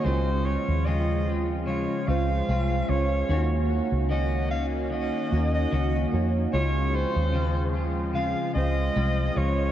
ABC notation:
X:1
M:4/4
L:1/16
Q:"Swing 16ths" 1/4=74
K:Db
V:1 name="Soprano saxophone"
c2 d2 e3 z d2 f4 d2- | d2 z2 e2 f2 e3 e3 z2 | d2 c4 z2 f2 e4 d2 |]
V:2 name="Synth keys"
[A,DFA]6 z4 [A,DFc]4 [A,DFd]2 | [B,EGd]6 z4 [B,EGd]4 [B,EGd]2 | [A,DFA]6 z4 [A,DFc]4 [A,DFd]2 |]
V:3 name="Clean electric guitar"
[D,A,CF]2 [A,F]2 [D,A,CF]2 [A,CF]2 [D,A,F]2 [A,CF]2 [A,CF]2 [A,F]2 | [E,B,DG]2 [B,DG]2 [E,B,DG]2 [B,DG]2 [E,B,DG]2 [B,DG]2 [E,B,DG]2 [B,DG]2 | [D,A,F]2 [A,CF]2 [D,A,CF]2 [A,CF]2 [D,A,CF]2 [A,CF]2 [A,CF]2 [A,F]2 |]
V:4 name="Analog synth pad"
[F,A,F]16 | [E,B,DG]16 | [F,A,F]16 |]
V:5 name="Fingered electric bass" clef=bass
D,,3 E,,6 z D,,2 C,,2 D,,2 | E,,3 D,,6 z E,,2 D,,2 F,,2 | D,,3 E,,6 z D,,2 C,,2 D,,2 |]